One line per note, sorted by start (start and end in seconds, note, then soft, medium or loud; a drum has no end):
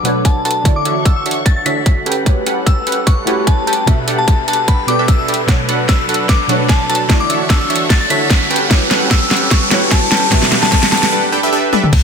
0.00 0.62 B2 loud
0.00 0.64 F#3 medium
0.00 0.63 F#3 medium
0.00 2.03 D4 medium
0.00 0.64 A4 medium
0.00 0.64 B4 medium
0.00 riser medium
0.05 0.63 A3 medium
0.05 0.23 D4 medium
0.05 0.64 D4 medium
0.05 0.23 F#4 medium
0.05 0.23 A4 medium
0.05 0.23 B4 medium
0.05 0.64 C#5 loud
0.05 0.23 F#5 loud
0.05 closed hi-hat medium
0.25 0.43 D4 medium
0.25 0.43 F#4 medium
0.25 0.43 A4 medium
0.25 0.43 B4 medium
0.25 0.43 F#5 medium
0.25 0.40 A5 medium
0.25 kick medium
0.25 closed hi-hat medium
0.45 0.63 D4 medium
0.45 0.63 F#4 medium
0.45 0.63 A4 medium
0.45 0.63 B4 medium
0.45 0.70 A5 medium
0.45 0.63 A5 loud
0.45 closed hi-hat soft
0.51 closed hi-hat medium
0.63 1.63 D3 medium
0.63 2.05 E3 medium
0.63 1.63 A3 medium
0.63 0.83 D4 medium
0.63 1.64 E4 medium
0.63 0.83 F#4 medium
0.63 1.64 F#4 medium
0.63 0.83 A4 medium
0.63 0.83 C#5 medium
0.63 0.83 E5 medium
0.63 5.44 F#5 medium
0.63 2.05 C#6 medium
0.63 kick loud
0.63 closed hi-hat medium
0.67 1.65 D5 loud
0.76 0.90 D6 medium
0.85 1.03 D4 loud
0.85 1.03 F#4 medium
0.85 1.03 A4 medium
0.85 1.03 C#5 medium
0.85 1.03 E5 loud
0.85 closed hi-hat medium
1.05 1.23 D4 medium
1.05 1.23 F#4 medium
1.05 1.23 A4 medium
1.05 1.23 C#5 medium
1.05 1.23 A5 medium
1.05 1.12 E6 medium
1.05 kick medium
1.05 closed hi-hat medium
1.16 1.22 E6 medium
1.26 1.44 D4 medium
1.26 1.44 F#4 medium
1.26 1.44 A4 medium
1.26 1.44 C#5 medium
1.26 1.44 E5 medium
1.26 closed hi-hat soft
1.31 closed hi-hat medium
1.46 1.64 D4 medium
1.46 1.64 F#4 medium
1.46 1.64 A4 medium
1.46 1.64 C#5 medium
1.46 1.64 E5 medium
1.46 1.53 A6 medium
1.46 kick loud
1.46 closed hi-hat medium
1.56 1.62 A6 medium
1.65 2.05 D3 medium
1.65 2.05 A3 medium
1.65 1.84 D4 loud
1.65 2.05 E4 medium
1.65 1.84 F#4 medium
1.65 2.05 F#4 medium
1.65 1.84 A4 medium
1.65 1.84 C#5 medium
1.65 2.06 C#5 medium
1.65 1.84 E5 loud
1.65 1.97 B6 medium
1.65 closed hi-hat medium
1.86 2.04 D4 medium
1.86 2.04 F#4 medium
1.86 2.04 A4 medium
1.86 2.04 C#5 medium
1.86 2.04 E5 medium
1.86 kick loud
1.86 closed hi-hat medium
2.06 5.45 G3 medium
2.06 2.24 C#4 medium
2.06 3.86 C#4 medium
2.06 2.24 G4 medium
2.06 2.24 A4 medium
2.06 7.06 A4 medium
2.06 2.24 B4 medium
2.06 7.06 B4 medium
2.06 2.24 G5 loud
2.06 closed hi-hat soft
2.12 closed hi-hat medium
2.24 3.24 A3 medium
2.24 2.44 C#4 medium
2.24 3.24 E4 medium
2.24 3.25 F#4 medium
2.24 2.44 G4 medium
2.24 3.25 G4 medium
2.24 2.44 A4 medium
2.24 2.44 B4 medium
2.24 3.25 B4 medium
2.24 3.26 C#5 medium
2.24 2.44 F#5 loud
2.24 kick loud
2.24 closed hi-hat medium
2.46 2.64 C#4 loud
2.46 2.64 G4 medium
2.46 2.64 A4 medium
2.46 2.64 B4 medium
2.46 2.64 F#5 loud
2.46 closed hi-hat medium
2.66 2.84 C#4 medium
2.66 2.84 G4 medium
2.66 2.84 A4 medium
2.66 2.84 B4 medium
2.66 2.84 A5 medium
2.66 3.05 E6 medium
2.66 kick loud
2.66 closed hi-hat medium
2.87 3.05 C#4 medium
2.87 3.05 G4 medium
2.87 3.05 A4 medium
2.87 3.05 B4 medium
2.87 3.05 F#5 medium
2.87 closed hi-hat soft
2.92 closed hi-hat medium
3.07 3.25 C#4 medium
3.07 3.25 G4 medium
3.07 3.25 A4 medium
3.07 3.25 B4 medium
3.07 3.25 F#5 medium
3.07 3.22 C#6 medium
3.07 kick loud
3.07 closed hi-hat medium
3.25 3.84 A3 loud
3.25 3.45 C#4 loud
3.25 3.85 E4 medium
3.25 3.85 F#4 medium
3.25 3.45 G4 medium
3.25 3.85 G4 medium
3.25 3.45 A4 medium
3.25 3.45 B4 medium
3.25 3.86 B4 medium
3.25 3.45 F#5 loud
3.25 closed hi-hat medium
3.29 3.86 C#5 loud
3.47 3.65 G4 medium
3.47 3.65 A4 medium
3.47 3.65 B4 medium
3.47 3.65 F#5 medium
3.47 3.62 A5 medium
3.47 kick loud
3.47 closed hi-hat medium
3.67 3.85 C#4 medium
3.67 3.85 G4 medium
3.67 3.85 A4 medium
3.67 3.85 B4 medium
3.67 3.85 G5 loud
3.67 3.92 A5 medium
3.67 closed hi-hat soft
3.73 closed hi-hat medium
3.85 4.85 B2 loud
3.85 5.47 B2 medium
3.85 4.85 B3 medium
3.85 4.05 D4 medium
3.85 4.86 F#4 medium
3.85 4.05 G4 medium
3.85 4.05 A4 medium
3.85 4.86 A4 medium
3.85 4.05 B4 medium
3.85 4.87 E5 loud
3.85 4.05 F#5 loud
3.85 kick loud
3.85 closed hi-hat medium
4.08 4.25 D4 medium
4.08 4.26 G4 medium
4.08 4.26 A4 medium
4.08 4.26 B4 medium
4.08 4.26 F#5 loud
4.08 closed hi-hat medium
4.18 4.33 A5 medium
4.28 4.45 D4 medium
4.28 4.45 G4 medium
4.28 4.45 A4 medium
4.28 4.45 B4 medium
4.28 4.45 A5 medium
4.28 kick loud
4.28 closed hi-hat medium
4.48 4.66 D4 medium
4.48 4.66 G4 medium
4.48 4.66 A4 medium
4.48 4.66 B4 medium
4.48 4.66 F#5 medium
4.48 4.66 A5 medium
4.48 closed hi-hat soft
4.53 closed hi-hat medium
4.68 4.86 D4 medium
4.68 4.86 G4 medium
4.68 4.86 A4 medium
4.68 4.86 B4 medium
4.68 4.86 F#5 medium
4.68 4.86 B5 medium
4.68 kick loud
4.68 closed hi-hat medium
4.86 5.45 B2 medium
4.86 5.46 B3 medium
4.86 4.96 D4 medium
4.86 5.46 F#4 medium
4.86 4.96 G4 medium
4.86 4.96 A4 medium
4.86 5.47 A4 medium
4.86 4.96 B4 medium
4.86 5.47 D5 medium
4.86 4.96 G5 medium
4.86 4.95 D6 medium
4.86 closed hi-hat medium
4.99 5.06 D4 loud
4.99 5.06 G4 medium
4.99 5.06 A4 medium
4.99 5.06 B4 medium
4.99 5.06 E5 loud
4.99 5.05 D6 medium
5.08 5.26 D4 loud
5.08 5.26 G4 medium
5.08 5.26 A4 medium
5.08 5.26 E5 loud
5.08 5.15 E6 medium
5.08 kick loud
5.08 closed hi-hat medium
5.19 5.25 E6 medium
5.28 5.41 D4 medium
5.28 5.41 G4 medium
5.28 5.41 A4 medium
5.28 5.41 B4 medium
5.28 5.41 E5 medium
5.28 closed hi-hat soft
5.34 closed hi-hat medium
5.46 6.46 B2 medium
5.46 6.46 F#3 medium
5.46 7.08 F#3 medium
5.46 6.47 A3 medium
5.46 7.08 D4 medium
5.46 5.66 D4 medium
5.46 6.47 D4 medium
5.46 5.66 F#4 medium
5.46 5.66 A4 medium
5.46 5.66 B4 medium
5.46 5.66 F#5 loud
5.46 kick loud
5.46 snare soft
5.46 closed hi-hat medium
5.50 6.48 C#5 medium
5.69 5.87 D4 loud
5.69 5.87 F#4 medium
5.69 5.87 A4 medium
5.69 5.87 B4 medium
5.69 5.87 F#5 loud
5.69 closed hi-hat medium
5.89 6.06 A4 medium
5.89 6.06 B4 medium
5.89 6.06 B5 medium
5.89 6.27 E6 medium
5.89 kick loud
5.89 snare soft
5.89 closed hi-hat medium
6.09 6.27 D4 medium
6.09 6.27 F#4 medium
6.09 6.27 A4 medium
6.09 6.27 B4 medium
6.09 6.27 F#5 medium
6.09 closed hi-hat soft
6.14 closed hi-hat medium
6.29 6.47 F#4 medium
6.29 6.47 A4 medium
6.29 6.47 B4 medium
6.29 6.47 F#5 medium
6.29 6.44 D6 medium
6.29 kick loud
6.29 snare medium
6.29 closed hi-hat medium
6.47 7.06 B2 loud
6.47 7.07 F#3 medium
6.47 7.07 A3 medium
6.47 6.67 D4 loud
6.47 7.08 D4 medium
6.47 6.67 F#4 medium
6.47 6.67 A4 medium
6.47 6.67 B4 medium
6.47 7.08 C#5 loud
6.47 6.67 F#5 loud
6.47 closed hi-hat medium
6.69 6.84 A5 medium
6.69 kick loud
6.69 snare medium
6.69 closed hi-hat medium
6.89 7.07 D4 medium
6.89 7.07 F#4 medium
6.89 7.07 A4 medium
6.89 7.07 B4 medium
6.89 7.07 A5 loud
6.89 7.14 A5 medium
6.89 closed hi-hat soft
6.95 closed hi-hat medium
7.08 8.07 D3 loud
7.08 8.49 E3 medium
7.08 8.08 A3 medium
7.08 8.49 D4 medium
7.08 7.27 D4 medium
7.08 8.08 E4 medium
7.08 7.27 F#4 medium
7.08 8.09 F#4 medium
7.08 7.27 A4 medium
7.08 7.27 C#5 medium
7.08 8.09 D5 loud
7.08 7.27 E5 loud
7.08 10.28 F#5 medium
7.08 8.49 C#6 medium
7.08 kick loud
7.08 snare medium
7.08 closed hi-hat medium
7.20 7.35 D6 medium
7.30 7.48 D4 loud
7.30 7.48 F#4 medium
7.30 7.48 A4 medium
7.30 7.48 C#5 medium
7.30 7.48 E5 loud
7.30 closed hi-hat medium
7.50 7.67 D4 medium
7.50 7.67 F#4 medium
7.50 7.67 A4 medium
7.50 7.67 C#5 medium
7.50 7.67 A5 medium
7.50 7.57 E6 medium
7.50 kick loud
7.50 snare medium
7.50 closed hi-hat medium
7.61 7.67 E6 medium
7.70 7.88 D4 medium
7.70 7.88 F#4 medium
7.70 7.88 A4 medium
7.70 7.88 C#5 medium
7.70 7.88 E5 medium
7.70 closed hi-hat soft
7.76 closed hi-hat medium
7.90 8.08 D4 medium
7.90 8.08 F#4 medium
7.90 8.08 A4 medium
7.90 8.08 C#5 medium
7.90 8.08 E5 medium
7.90 7.97 A6 medium
7.90 kick loud
7.90 snare medium
7.90 closed hi-hat medium
8.01 8.07 A6 medium
8.09 8.49 D3 medium
8.09 8.49 A3 medium
8.09 8.28 D4 loud
8.09 8.49 E4 medium
8.09 8.28 F#4 medium
8.09 8.50 F#4 medium
8.09 8.28 A4 medium
8.09 8.28 C#5 medium
8.09 8.50 C#5 medium
8.09 8.28 E5 loud
8.09 8.41 B6 medium
8.09 closed hi-hat medium
8.30 8.48 E5 medium
8.30 kick loud
8.30 snare medium
8.30 closed hi-hat medium
8.51 11.10 G3 medium
8.51 8.68 C#4 medium
8.51 10.30 C#4 medium
8.51 8.68 G4 medium
8.51 8.68 A4 medium
8.51 11.10 A4 medium
8.51 8.68 B4 medium
8.51 11.10 B4 medium
8.51 8.68 G5 loud
8.51 closed hi-hat soft
8.56 closed hi-hat medium
8.68 9.68 A3 medium
8.68 8.89 C#4 medium
8.68 9.68 E4 medium
8.68 9.69 F#4 medium
8.68 8.89 G4 medium
8.68 9.69 G4 medium
8.68 8.89 A4 medium
8.68 8.89 B4 medium
8.68 9.70 B4 medium
8.68 9.70 C#5 medium
8.68 8.89 F#5 loud
8.68 kick loud
8.68 snare medium
8.68 closed hi-hat medium
8.91 9.09 C#4 loud
8.91 9.09 G4 medium
8.91 9.09 A4 medium
8.91 9.09 B4 medium
8.91 9.09 F#5 loud
8.91 snare medium
8.91 closed hi-hat medium
9.11 9.28 C#4 medium
9.11 9.28 G4 medium
9.11 9.28 A4 medium
9.11 9.28 B4 medium
9.11 9.28 A5 medium
9.11 9.49 E6 medium
9.11 kick loud
9.11 snare medium
9.11 closed hi-hat medium
9.31 9.49 C#4 medium
9.31 9.49 G4 medium
9.31 9.49 A4 medium
9.31 9.49 B4 medium
9.31 9.49 F#5 medium
9.31 snare medium
9.31 closed hi-hat medium
9.37 closed hi-hat medium
9.51 9.69 G4 medium
9.51 9.69 A4 medium
9.51 9.69 B4 medium
9.51 9.69 F#5 medium
9.51 9.66 C#6 loud
9.51 kick loud
9.51 snare medium
9.51 closed hi-hat medium
9.69 10.29 A3 loud
9.69 9.89 C#4 loud
9.69 10.29 E4 medium
9.69 10.29 F#4 medium
9.69 9.89 G4 medium
9.69 10.30 G4 medium
9.69 9.89 A4 medium
9.69 9.89 B4 medium
9.69 10.30 B4 medium
9.69 10.30 C#5 loud
9.69 9.89 F#5 loud
9.69 snare medium
9.69 closed hi-hat medium
9.91 10.09 C#4 medium
9.91 10.09 G4 medium
9.91 10.09 A4 medium
9.91 10.09 B4 medium
9.91 10.09 F#5 medium
9.91 10.07 A5 medium
9.91 kick loud
9.91 snare medium
9.91 closed hi-hat medium
10.11 10.30 C#4 medium
10.11 10.30 G4 medium
10.11 10.30 A4 medium
10.11 10.30 B4 medium
10.11 10.30 G5 loud
10.11 10.36 A5 medium
10.11 snare medium
10.11 closed hi-hat medium
10.17 closed hi-hat medium
10.30 11.11 B2 loud
10.30 11.11 B2 medium
10.30 11.12 B3 medium
10.30 11.12 F#4 medium
10.30 11.11 F#4 medium
10.30 10.50 G4 medium
10.30 10.50 A4 medium
10.30 11.13 A4 medium
10.30 10.50 B4 medium
10.30 10.50 F#5 loud
10.30 kick loud
10.30 snare medium
10.30 closed hi-hat medium
10.34 11.13 E5 loud
10.42 snare medium
10.52 10.70 D4 loud
10.52 10.70 G4 medium
10.52 10.70 A4 medium
10.52 10.70 B4 medium
10.52 10.70 F#5 loud
10.52 snare medium
10.52 closed hi-hat medium
10.62 10.77 A5 medium
10.62 snare medium
10.72 10.89 G4 medium
10.72 10.89 A4 medium
10.72 10.89 B4 medium
10.72 10.89 A5 medium
10.72 kick loud
10.72 snare loud
10.72 closed hi-hat medium
10.83 snare medium
10.92 11.10 D4 medium
10.92 11.10 G4 medium
10.92 11.10 A4 medium
10.92 11.10 B4 medium
10.92 11.10 F#5 medium
10.92 11.10 A5 medium
10.92 snare loud
10.92 closed hi-hat medium
10.97 closed hi-hat medium
11.03 snare medium
11.12 11.30 D4 medium
11.12 11.30 G4 medium
11.12 11.30 A4 medium
11.12 11.30 B4 medium
11.12 11.30 F#5 medium
11.32 11.41 D4 medium
11.32 11.41 G4 medium
11.32 11.41 A4 medium
11.32 11.41 B4 medium
11.32 11.41 G5 medium
11.43 11.50 D4 loud
11.43 11.50 G4 medium
11.43 11.50 A4 medium
11.43 11.50 B4 medium
11.43 11.50 E5 loud
11.52 11.70 D4 loud
11.52 11.70 G4 medium
11.52 11.70 A4 medium
11.52 11.70 B4 medium
11.52 11.70 E5 loud
11.73 11.85 D4 medium
11.73 11.85 G4 medium
11.73 11.85 A4 medium
11.73 11.85 B4 medium
11.73 11.85 E5 medium
11.73 high tom medium
11.84 mid tom medium
11.93 12.03 B1 loud
11.93 12.03 D3 medium
11.93 12.03 A3 medium
11.93 12.03 B3 medium
11.93 12.03 F#4 medium
11.93 12.03 F#5 loud
11.93 kick loud
11.93 closed hi-hat medium
11.93 crash loud
11.93 impact medium